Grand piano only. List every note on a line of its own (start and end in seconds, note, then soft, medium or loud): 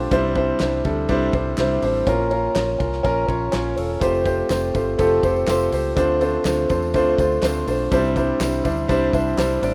0.00 0.14 D3 medium
0.00 0.14 A3 loud
0.00 0.11 C4 loud
0.00 0.12 D4 loud
0.00 0.14 F4 loud
0.00 0.14 G4 loud
0.00 0.13 C5 loud
0.11 0.81 C3 medium
0.11 0.31 G3 loud
0.11 0.31 C4 medium
0.11 0.32 D4 medium
0.11 0.32 E4 loud
0.11 0.32 C5 loud
0.35 0.55 G3 loud
0.35 0.56 C4 medium
0.35 0.56 D4 medium
0.35 0.56 E4 medium
0.35 0.56 C5 loud
0.59 0.80 G3 medium
0.59 0.80 C4 medium
0.59 0.80 D4 medium
0.59 0.81 E4 medium
0.59 0.81 C5 medium
0.84 1.04 G3 medium
0.84 1.04 C4 medium
0.84 1.05 D4 medium
0.84 1.05 E4 medium
0.84 1.05 A4 medium
1.09 1.29 G3 loud
1.09 1.29 C4 loud
1.09 1.29 D4 loud
1.09 1.30 E4 medium
1.09 1.30 C5 loud
1.33 1.53 G3 medium
1.33 1.53 C4 medium
1.33 1.53 D4 medium
1.33 1.54 E4 medium
1.33 1.54 C5 medium
1.58 1.78 G3 loud
1.58 1.78 C4 medium
1.58 1.78 D4 medium
1.58 1.78 E4 medium
1.58 1.79 C5 loud
1.82 2.02 G3 medium
1.82 2.03 C4 medium
1.82 2.03 D4 medium
1.82 2.03 E4 medium
1.82 2.03 C5 medium
2.07 2.76 A#2 medium
2.07 2.27 C#4 loud
2.07 2.27 F4 loud
2.07 2.28 A#4 loud
2.30 2.51 C#4 medium
2.30 2.51 F4 medium
2.30 2.52 A#4 loud
2.54 2.75 C#4 medium
2.54 2.75 F4 medium
2.54 2.76 A#4 medium
2.79 2.99 C#4 medium
2.79 3.00 F4 medium
2.79 3.00 A#4 medium
3.03 3.24 C#4 loud
3.03 3.24 F4 medium
3.03 3.25 A#4 loud
3.27 3.48 C#4 medium
3.27 3.48 F4 medium
3.27 3.49 C#5 medium
3.52 3.72 C#4 loud
3.52 3.72 F4 medium
3.52 3.73 C#5 loud
3.76 3.97 C#4 medium
3.76 3.97 F4 medium
3.76 3.98 A4 medium
4.00 4.21 A3 loud
4.00 4.21 C4 medium
4.00 4.21 F4 loud
4.00 4.21 G4 loud
4.00 4.22 C5 loud
4.24 4.45 A3 medium
4.24 4.45 C4 medium
4.24 4.46 F4 medium
4.24 4.46 G4 medium
4.24 4.46 C5 loud
4.49 4.70 A3 medium
4.49 4.70 C4 medium
4.49 4.70 F4 medium
4.49 4.70 G4 medium
4.49 4.71 C5 medium
4.74 4.94 A3 medium
4.74 4.94 C4 medium
4.74 4.95 F4 medium
4.74 4.95 G4 medium
4.74 4.95 C5 medium
4.98 5.18 A3 loud
4.98 5.19 C4 loud
4.98 5.19 F4 loud
4.98 5.19 G4 medium
4.98 5.19 A4 loud
5.23 5.43 A3 medium
5.23 5.43 C4 medium
5.23 5.44 F4 medium
5.23 5.44 G4 medium
5.23 5.44 C5 medium
5.47 5.67 A3 loud
5.47 5.68 C4 medium
5.47 5.68 F4 medium
5.47 5.68 G4 medium
5.47 5.68 C5 loud
5.72 5.92 A3 medium
5.72 5.92 C4 medium
5.72 5.92 F4 medium
5.72 5.93 G4 medium
5.72 5.93 C5 medium
5.96 6.66 D3 medium
5.96 6.16 A3 loud
5.96 6.16 C4 medium
5.96 6.17 D4 loud
5.96 6.17 F4 medium
5.96 6.17 C5 loud
6.20 6.40 A3 loud
6.20 6.41 C4 medium
6.20 6.41 D4 medium
6.20 6.41 F4 medium
6.20 6.41 C5 loud
6.44 6.65 A3 medium
6.44 6.65 C4 medium
6.44 6.65 D4 medium
6.44 6.65 F4 medium
6.44 6.66 C5 medium
6.69 6.89 A3 medium
6.69 6.90 C4 medium
6.69 6.90 D4 medium
6.69 6.90 F4 medium
6.69 6.90 C5 medium
6.94 7.14 A3 loud
6.94 7.14 C4 loud
6.94 7.14 D4 loud
6.94 7.15 F4 loud
6.94 7.15 C5 loud
7.19 7.38 A3 medium
7.19 7.39 C4 medium
7.19 7.39 D4 medium
7.19 7.39 F4 medium
7.19 7.39 C5 loud
7.43 7.63 A3 loud
7.43 7.63 C4 medium
7.43 7.63 D4 medium
7.43 7.63 F4 medium
7.43 7.63 C5 loud
7.67 7.87 A3 medium
7.67 7.87 C4 medium
7.67 7.87 D4 medium
7.67 7.88 F4 medium
7.67 7.88 C5 loud
7.91 8.61 C3 medium
7.91 8.11 G3 loud
7.91 8.12 C4 loud
7.91 8.12 D4 medium
7.91 8.12 E4 medium
7.91 8.12 C5 loud
8.16 8.36 G3 medium
8.16 8.36 C4 medium
8.16 8.36 D4 medium
8.16 8.36 E4 medium
8.16 8.36 C5 loud
8.40 8.60 G3 medium
8.40 8.60 C4 medium
8.40 8.61 D4 medium
8.40 8.61 E4 medium
8.40 8.61 C5 medium
8.64 8.84 G3 medium
8.64 8.84 C4 medium
8.64 8.85 D4 medium
8.64 8.85 E4 medium
8.64 8.85 C5 medium
8.88 9.08 G3 loud
8.88 9.09 C4 loud
8.88 9.09 D4 loud
8.88 9.09 E4 loud
8.88 9.09 C5 loud
9.13 9.33 G3 medium
9.13 9.33 C4 medium
9.13 9.33 D4 medium
9.13 9.33 E4 medium
9.13 9.34 C5 loud
9.38 9.58 G3 medium
9.38 9.58 C4 medium
9.38 9.58 D4 medium
9.38 9.58 E4 medium
9.38 9.58 C5 loud
9.62 9.74 G3 medium
9.62 9.74 C4 medium
9.62 9.74 D4 medium
9.62 9.74 E4 medium
9.62 9.74 D5 medium